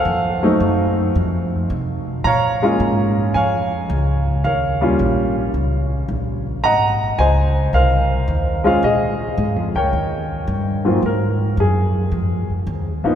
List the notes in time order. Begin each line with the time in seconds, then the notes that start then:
Already playing: A4 C5 F5
0.05 F2
0.43 F#3 A3 C4 D#4
0.60 F#2
1.15 F2
1.70 C3
2.24 A#2 C#5 F5 A#5
2.62 G#3 A#3 C#4 F4
2.80 G#2
3.34 F2 C#5 F5 G#5
3.90 C#2
4.44 D#2 A#4 C#5 F5
4.81 G3 A#3 C#4 F4
4.99 A#1
5.54 C#2
6.08 A#1
6.64 G#1 D#5 F#5 A#5
7.18 C#2 C5 D#5 G#5
7.73 C2 A#4 C5 F5
8.28 D#2
8.64 G#3 C4 C#4 F4 F5
8.83 A#2 G#4 D#5
9.38 G#2
9.56 F2
9.75 C#2 A#4 C#5 G5
9.93 D#2
10.47 G2
10.85 G#2 F#3 A#3 C4 F4
11.03 G#2 A#4
11.57 F#2 G#4
12.12 F2
12.50 muted upright bass stroke
12.67 D#2
13.04 F3 A#3 B3 D#4, muted upright bass stroke